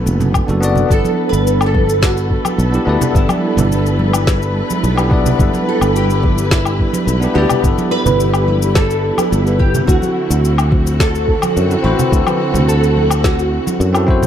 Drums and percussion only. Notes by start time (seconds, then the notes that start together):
0.06 high conga, shaker
0.20 low conga, shaker
0.34 kick, low woodblock, shaker
0.48 high conga, shaker
0.63 shaker
0.76 low conga, shaker
0.90 kick, shaker
1.04 high conga, shaker
1.33 shaker
1.47 shaker
1.61 low woodblock, shaker
1.74 kick, high conga
1.89 shaker
2.03 kick, snare, shaker
2.17 shaker
2.31 kick
2.45 high conga, low woodblock, shaker
2.59 shaker
2.74 shaker
3.01 low conga, shaker
3.15 kick, shaker
3.29 high conga, low woodblock, shaker
3.58 low conga, shaker
3.72 shaker
3.86 shaker
3.99 high conga
4.13 low woodblock, shaker
4.27 kick, snare, shaker
4.42 shaker
4.70 high conga, shaker
4.84 shaker
4.97 low woodblock, shaker
5.11 kick
5.26 low conga, shaker
5.39 kick, shaker
5.54 high conga, shaker
5.81 low woodblock, shaker
5.96 shaker
6.10 shaker
6.23 kick, high conga
6.38 shaker
6.51 kick, snare, shaker
6.65 low woodblock, shaker
6.80 kick
6.94 high conga, shaker
7.08 shaker
7.22 shaker
7.49 low conga, low woodblock, shaker
7.64 kick, shaker
7.78 high conga, shaker
8.06 low conga, shaker
8.20 shaker
8.34 low woodblock, shaker
8.47 high conga
8.62 shaker
8.75 kick, snare, shaker
8.90 shaker
9.18 high conga, low woodblock, shaker
9.33 shaker
9.47 shaker
9.60 kick
9.75 low conga, shaker
9.88 kick, shaker
10.02 high conga, shaker
10.31 shaker
10.45 shaker
10.58 low woodblock, shaker
10.72 kick, high conga
10.87 shaker
11.00 kick, snare, shaker
11.15 shaker
11.28 kick
11.42 high conga, low woodblock, shaker
11.57 shaker
11.71 shaker
11.99 low conga, shaker
12.12 kick, shaker
12.27 high conga, low woodblock, shaker
12.54 low conga, shaker
12.69 shaker
12.83 shaker
12.97 high conga
13.11 low woodblock, shaker
13.24 kick, snare, shaker
13.39 shaker
13.67 high conga, shaker
13.81 shaker
13.95 low woodblock, shaker
14.08 kick
14.22 low conga, shaker